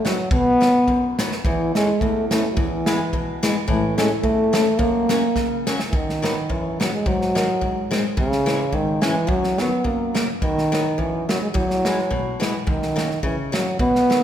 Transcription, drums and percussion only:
0.06 snare, hi-hat pedal
0.31 kick
0.62 snare, hi-hat pedal
0.88 kick
1.19 snare, hi-hat pedal
1.32 snare
1.45 kick
1.75 snare, hi-hat pedal
2.01 kick
2.31 snare, hi-hat pedal
2.57 kick
2.86 snare, hi-hat pedal
3.13 kick
3.43 snare, hi-hat pedal
3.68 kick
3.98 snare, hi-hat pedal
4.24 kick
4.54 snare, hi-hat pedal
4.79 kick
5.09 snare, hi-hat pedal
5.36 kick, snare
5.67 snare, hi-hat pedal
5.80 snare
5.93 kick
6.09 snare
6.24 snare
6.50 kick
6.81 snare
7.06 kick
7.21 snare
7.36 snare
7.62 kick
7.92 snare
8.17 kick
8.32 snare
8.47 snare
8.73 kick
9.02 snare
9.29 kick
9.44 snare
9.58 snare
9.85 kick
10.15 snare
10.42 kick
10.58 snare
10.73 snare
10.99 kick
11.29 snare
11.55 kick
11.70 snare
11.85 snare
11.99 snare
12.11 kick
12.42 snare
12.67 kick
12.82 snare
12.98 snare
13.11 snare
13.23 kick
13.54 snare
13.79 kick
13.95 snare
14.11 snare

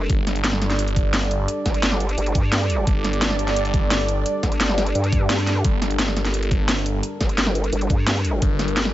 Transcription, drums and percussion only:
0.10 kick, closed hi-hat
0.27 snare, closed hi-hat
0.36 closed hi-hat
0.44 snare, closed hi-hat
0.53 snare
0.62 snare, closed hi-hat
0.70 snare, closed hi-hat
0.79 closed hi-hat
0.88 closed hi-hat
0.96 kick, closed hi-hat
1.14 snare, closed hi-hat
1.22 closed hi-hat
1.31 closed hi-hat
1.48 closed hi-hat
1.66 kick, snare, closed hi-hat
1.74 closed hi-hat
1.83 snare, closed hi-hat
1.92 snare
2.00 closed hi-hat
2.09 closed hi-hat
2.18 closed hi-hat
2.26 closed hi-hat
2.35 kick, closed hi-hat
2.52 snare, closed hi-hat
2.61 closed hi-hat
2.70 closed hi-hat
2.87 kick, closed hi-hat
3.04 snare, closed hi-hat
3.13 closed hi-hat
3.22 snare, closed hi-hat
3.30 snare
3.39 closed hi-hat
3.48 snare, closed hi-hat
3.56 closed hi-hat
3.65 closed hi-hat
3.74 kick, closed hi-hat
3.91 snare, closed hi-hat
4.00 closed hi-hat
4.08 closed hi-hat
4.26 closed hi-hat
4.43 kick, snare, closed hi-hat
4.52 closed hi-hat
4.60 snare, closed hi-hat
4.69 snare
4.78 snare, closed hi-hat
4.86 closed hi-hat
4.95 closed hi-hat
5.04 closed hi-hat
5.12 kick, closed hi-hat
5.30 snare, closed hi-hat
5.38 closed hi-hat
5.47 snare, closed hi-hat
5.65 kick, closed hi-hat
5.82 snare, closed hi-hat
5.91 closed hi-hat
5.99 snare, closed hi-hat
6.08 snare
6.17 snare, closed hi-hat
6.25 snare, closed hi-hat
6.34 closed hi-hat
6.43 closed hi-hat
6.51 kick, closed hi-hat
6.69 snare, closed hi-hat
6.77 closed hi-hat
6.86 closed hi-hat
7.03 closed hi-hat
7.21 kick, snare, closed hi-hat
7.29 closed hi-hat
7.38 snare, closed hi-hat
7.47 snare
7.55 closed hi-hat
7.64 closed hi-hat
7.73 closed hi-hat
7.81 closed hi-hat
7.90 kick, closed hi-hat
8.07 snare, closed hi-hat
8.16 closed hi-hat
8.25 closed hi-hat
8.42 kick, closed hi-hat
8.59 snare, closed hi-hat
8.68 closed hi-hat
8.77 snare, closed hi-hat
8.85 snare

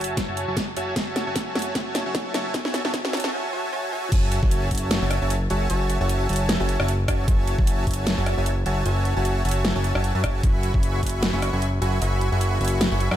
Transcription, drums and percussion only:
0.01 closed hi-hat
0.04 closed hi-hat
0.17 kick, snare, closed hi-hat
0.37 closed hi-hat
0.57 kick, snare, closed hi-hat
0.77 closed hi-hat
0.96 kick, snare, closed hi-hat
1.16 snare, closed hi-hat
1.36 kick, snare, closed hi-hat
1.55 snare, closed hi-hat
1.59 closed hi-hat
1.62 closed hi-hat
1.75 kick, snare, closed hi-hat
1.95 snare, closed hi-hat
2.15 kick, snare, closed hi-hat
2.34 snare, closed hi-hat
2.54 kick, snare, closed hi-hat
2.65 snare
2.74 snare, closed hi-hat
2.85 snare
2.94 kick, snare, closed hi-hat
3.05 snare
3.13 snare, closed hi-hat
3.17 closed hi-hat
3.20 closed hi-hat
3.24 snare
4.12 kick, closed hi-hat, crash
4.32 closed hi-hat
4.43 kick
4.51 closed hi-hat
4.71 kick, closed hi-hat
4.75 closed hi-hat
4.78 closed hi-hat
4.91 snare, closed hi-hat
5.11 cross-stick, closed hi-hat
5.30 closed hi-hat
5.50 closed hi-hat
5.70 closed hi-hat
5.90 closed hi-hat
6.09 closed hi-hat
6.29 closed hi-hat
6.33 closed hi-hat
6.36 closed hi-hat
6.49 snare, closed hi-hat
6.69 closed hi-hat
6.80 cross-stick
6.88 closed hi-hat
7.08 kick, cross-stick, closed hi-hat
7.28 kick, closed hi-hat
7.47 closed hi-hat
7.58 kick
7.67 closed hi-hat
7.87 kick, closed hi-hat
7.91 closed hi-hat
7.94 closed hi-hat
8.07 snare, closed hi-hat
8.26 cross-stick, closed hi-hat
8.46 closed hi-hat
8.66 closed hi-hat
8.86 closed hi-hat
9.05 closed hi-hat
9.25 closed hi-hat
9.45 closed hi-hat
9.49 closed hi-hat
9.51 closed hi-hat
9.65 snare, closed hi-hat
9.84 closed hi-hat
9.95 cross-stick
10.04 closed hi-hat
10.24 kick, cross-stick, closed hi-hat
10.43 kick, closed hi-hat
10.63 closed hi-hat
10.74 kick
10.83 closed hi-hat
11.03 kick, closed hi-hat
11.06 closed hi-hat
11.09 closed hi-hat
11.23 snare, closed hi-hat
11.42 cross-stick, closed hi-hat
11.62 closed hi-hat
11.82 closed hi-hat
12.02 closed hi-hat
12.21 closed hi-hat
12.41 closed hi-hat
12.61 closed hi-hat
12.65 closed hi-hat
12.68 closed hi-hat
12.81 snare, closed hi-hat
13.00 closed hi-hat
13.11 cross-stick

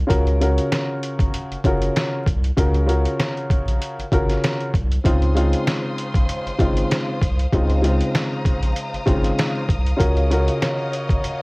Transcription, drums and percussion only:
0.10 kick, closed hi-hat
0.27 closed hi-hat
0.42 closed hi-hat
0.58 closed hi-hat
0.72 snare, closed hi-hat
1.03 closed hi-hat
1.19 kick, closed hi-hat
1.34 closed hi-hat
1.52 closed hi-hat
1.64 kick, closed hi-hat
1.82 closed hi-hat
1.96 snare, closed hi-hat
2.26 kick, closed hi-hat
2.44 closed hi-hat
2.57 kick, closed hi-hat
2.75 closed hi-hat
2.89 closed hi-hat
3.06 closed hi-hat
3.20 snare, closed hi-hat
3.37 closed hi-hat
3.50 kick, closed hi-hat
3.68 closed hi-hat
3.82 closed hi-hat
4.00 closed hi-hat
4.12 kick, closed hi-hat
4.29 snare, closed hi-hat
4.44 snare, closed hi-hat
4.61 closed hi-hat
4.74 kick, closed hi-hat
4.92 closed hi-hat
5.05 kick, closed hi-hat
5.22 closed hi-hat
5.37 closed hi-hat
5.53 closed hi-hat
5.67 snare, closed hi-hat
5.98 closed hi-hat
6.14 kick, closed hi-hat
6.29 closed hi-hat
6.47 closed hi-hat
6.59 kick, closed hi-hat
6.77 closed hi-hat
6.91 snare, closed hi-hat
7.21 kick, closed hi-hat
7.39 closed hi-hat
7.52 kick, closed hi-hat
7.70 closed hi-hat
7.84 closed hi-hat
8.00 closed hi-hat
8.15 snare, closed hi-hat
8.45 kick, closed hi-hat
8.63 closed hi-hat
8.76 closed hi-hat
8.94 closed hi-hat
9.07 kick, closed hi-hat
9.24 snare, closed hi-hat
9.39 snare, closed hi-hat
9.69 kick, closed hi-hat
9.86 closed hi-hat
10.00 kick, closed hi-hat
10.17 closed hi-hat
10.31 closed hi-hat
10.48 closed hi-hat
10.62 snare, closed hi-hat
10.93 closed hi-hat
11.09 kick, closed hi-hat
11.24 closed hi-hat

